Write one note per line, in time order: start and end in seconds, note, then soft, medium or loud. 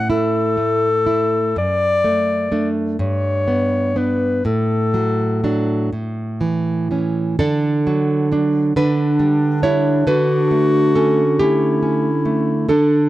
0.00 1.54 A2 medium
0.00 0.38 C#4 medium
0.10 0.88 E4 medium
0.10 1.55 A4 medium
0.57 1.38 A3 soft
1.06 1.57 E4 medium
1.56 2.96 F#2 medium
1.56 2.69 D5 loud
2.04 2.50 A3 medium
2.52 2.96 A3 soft
2.52 2.96 D4 medium
2.99 4.41 G2 medium
2.99 3.99 C#5 medium
3.48 3.95 B3 soft
3.96 4.42 B3 soft
3.96 4.42 D4 soft
3.96 4.45 B4 medium
4.45 5.89 A2 medium
4.45 5.91 A4 medium
4.94 5.43 F#3 soft
5.44 5.89 F#3 soft
5.44 5.89 D4 soft
5.93 7.35 A2 medium
6.41 6.90 E3 soft
6.91 7.36 E3 soft
6.91 7.36 C#4 soft
7.39 8.72 D3 medium
7.39 8.31 D4 medium
7.39 8.72 A4 loud
7.87 8.30 F#3 medium
8.32 8.72 F#3 medium
8.32 8.73 D4 medium
8.76 10.03 D3 medium
8.76 9.60 D4 medium
8.76 10.10 D4 medium
8.76 9.60 B4 loud
9.20 9.61 G3 medium
9.63 10.03 G3 medium
9.63 10.03 D4 medium
9.63 10.04 E4 medium
9.63 10.05 C#5 medium
10.07 12.66 D3 medium
10.07 10.92 D4 medium
10.07 11.42 F#4 medium
10.07 10.92 B4 loud
10.51 11.22 A3 medium
10.96 11.36 C#4 medium
10.96 11.37 A4 medium
11.39 12.08 A3 medium
11.39 11.81 C#4 medium
11.39 12.69 E4 medium
11.39 12.66 G4 medium
11.83 12.52 C#4 medium
12.25 12.69 A3 medium
12.69 13.09 D3 medium
12.69 13.09 D4 medium
12.69 13.09 A4 medium